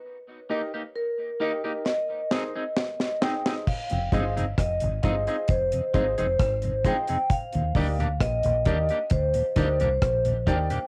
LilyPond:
<<
  \new Staff \with { instrumentName = "Vibraphone" } { \time 4/4 \key f \dorian \tempo 4 = 66 r4 bes'4 ees''4 ees''8 g''8 | f''4 ees''4 c''8. c''8. g''8 | f''4 ees''4 c''8. c''8. g''8 | }
  \new Staff \with { instrumentName = "Upright piano" } { \time 4/4 \key f \dorian r8 <ees' g' bes' ees''>16 r8. <ees' g' bes' ees''>16 <ees' g' bes' ees''>16 r16 <c'' ees''>16 <ees' aes' c'' ees''>16 r8. <ees' aes' c'' ees''>16 <ees' aes' c'' ees''>16 | r8 <f' aes' c'' ees''>16 r8. <f' aes' c'' ees''>16 <f' aes' c'' ees''>16 r8 <f' aes' c'' ees''>16 r8. <f' aes' c'' ees''>16 r16 | r8 <ees' g' bes' d''>16 r8. <ees' g' bes' d''>16 r8. <ees' g' bes' d''>16 r8. <ees' g' bes' d''>16 r16 | }
  \new Staff \with { instrumentName = "Clean electric guitar" } { \time 4/4 \key f \dorian r8 <bes ees' g'>16 <bes ees' g'>16 r8 <bes ees' g'>16 <bes ees' g'>16 r8 <c' ees' aes'>16 <c' ees' aes'>16 r8 <c' ees' aes'>16 <c' ees' aes'>16 | r8 <c' ees' aes'>16 <c' ees' aes'>16 r8 <c' ees' aes'>16 <c' ees' aes'>16 r8 <c' ees' aes'>16 <c' ees' aes'>16 r8 <c' ees' aes'>16 <c' ees' aes'>16 | r8 <bes d' g'>16 <bes d' g'>16 r8 <bes d' g'>16 <bes d' g'>16 r8 <bes d' g'>16 <bes d' g'>16 r8 <bes d' g'>16 <bes d' g'>16 | }
  \new Staff \with { instrumentName = "Tonewheel organ" } { \clef bass \time 4/4 \key f \dorian << { r1 | r8 <f aes ees'>8 r8 <f aes ees'>8 r8 <f aes ees'>8 r8 <f aes ees'>8 | r8 <ees g d'>8 r8 <ees g d'>8 r8 <ees g d'>8 r8 <ees g d'>8 | } \\ { r1 | r16 <f, c>16 r16 <f, c>16 r16 <f, c>16 r8. <f, c>16 r16 <f, c>16 r16 <f, c>16 r16 <f, c>16 | r16 <ees, bes,>16 r16 <ees, bes,>16 r16 <ees, bes,>16 r8. <ees, bes,>16 r16 <ees, bes,>16 r16 <ees, bes,>16 r16 <ees, bes,>16 | } >> }
  \new Staff \with { instrumentName = "Fingered electric bass" } { \clef bass \time 4/4 \key f \dorian r1 | r16 f,,16 g,,8 f,,16 aes,,16 g,,16 r16 f,,16 r16 aes,,16 f,,16 aes,,8 r8 | r16 ees,16 d,8 bes,,16 bes,,16 ees,16 r16 d,16 r16 d,16 c,16 bes,,8 ees,16 r16 | }
  \new DrumStaff \with { instrumentName = "Drums" } \drummode { \time 4/4 r4 r4 sn8 sn8 sn16 sn16 sn16 sn16 | <cymc bd>16 hh16 <hh bd>16 hh16 <hh bd ss>16 hh16 <hh bd>16 hh16 <hh bd>16 hh16 <hh bd>16 hh16 <hh bd ss>16 hh16 <hh bd>16 hh16 | <hh bd>16 hh16 <hho bd>16 hh16 <hh bd ss>16 hh16 <hh bd>16 hh16 <hh bd>16 hh16 <hh bd>16 hh16 <hh bd ss>16 hh16 <hh bd>16 hh16 | }
>>